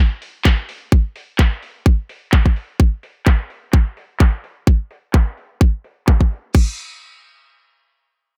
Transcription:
0.22 open hi-hat
0.45 kick, clap
0.69 open hi-hat
0.92 kick
1.16 open hi-hat
1.39 kick, clap
1.63 open hi-hat
1.86 kick
2.09 open hi-hat
2.33 kick, clap
2.46 kick
2.56 open hi-hat
2.80 kick
3.03 open hi-hat
3.26 kick, clap
3.50 open hi-hat
3.73 kick, clap
3.97 open hi-hat
4.20 kick, clap
4.44 open hi-hat
4.67 kick
4.91 open hi-hat
5.14 kick, clap
5.37 open hi-hat
5.61 kick
5.84 open hi-hat
6.07 kick, clap
6.21 kick
6.31 open hi-hat
6.55 kick, crash

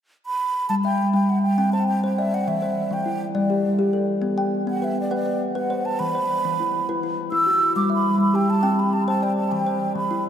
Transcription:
0.26 B5
0.69 G3 A5
0.85 E5 G5
1.13 G3 G5
1.30 F#5
1.43 G5
1.58 C4 G5
1.73 C5 A5
1.88 G5
2.04 C5 G5
2.18 D5 E5
2.34 F#5
2.48 E3 E5
2.62 C5
2.91 E3 G5
3.06 E4
3.35 G3 D5
3.50 G4
3.79 G4
3.93 A4
4.22 B3
4.38 G5
4.67 B3 F#5
4.82 B4 E5
5.00 D5
5.11 B4 D5 F#5
5.26 B4
5.55 B4 F#5
5.70 C5
5.85 A5
5.99 E3 B5
6.15 C5
6.45 E3
6.60 E4
6.89 E4 B4
7.03 E4
7.32 E4 E6
7.46 F#4
7.76 G3 D6
7.90 E5 B5
8.18 G3 B5
8.34 G4 G5
8.50 A5
8.63 C4 G5
8.79 B5
8.93 A5
9.07 C5 A5
9.22 D5 G5
9.36 A5
9.52 E3 G5
9.67 C5
9.96 E3 B5
10.11 E4

